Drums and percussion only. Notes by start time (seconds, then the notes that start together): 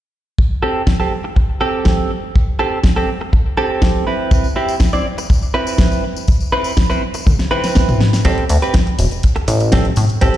0.38 kick
0.87 kick, snare
1.36 kick
1.85 kick, snare
2.35 kick
2.83 kick, snare
3.33 kick
3.82 kick, snare
4.31 kick, tambourine
4.44 tambourine
4.69 tambourine
4.80 kick, snare, tambourine
4.93 tambourine
5.18 tambourine
5.30 kick, tambourine
5.42 tambourine
5.67 tambourine
5.78 kick, snare, tambourine
5.92 tambourine
6.16 tambourine
6.28 kick, tambourine
6.40 tambourine
6.64 tambourine
6.77 kick, snare, tambourine
6.90 tambourine
7.14 tambourine
7.27 kick, high tom, tambourine
7.39 snare, tambourine
7.64 snare, tambourine
7.75 kick, snare, tambourine
7.89 mid tom, tambourine
8.00 snare
8.13 snare, tambourine
8.24 kick, closed hi-hat, tambourine
8.38 closed hi-hat
8.49 open hi-hat, tambourine
8.62 closed hi-hat, tambourine
8.74 kick, snare, closed hi-hat, tambourine
8.87 closed hi-hat
8.99 open hi-hat, tambourine
9.11 closed hi-hat, tambourine
9.23 kick, closed hi-hat, tambourine
9.36 closed hi-hat
9.48 open hi-hat, tambourine
9.60 closed hi-hat, tambourine
9.72 kick, snare, closed hi-hat, tambourine
9.85 closed hi-hat
9.96 open hi-hat, tambourine
10.09 closed hi-hat, tambourine
10.21 kick, closed hi-hat, tambourine
10.34 closed hi-hat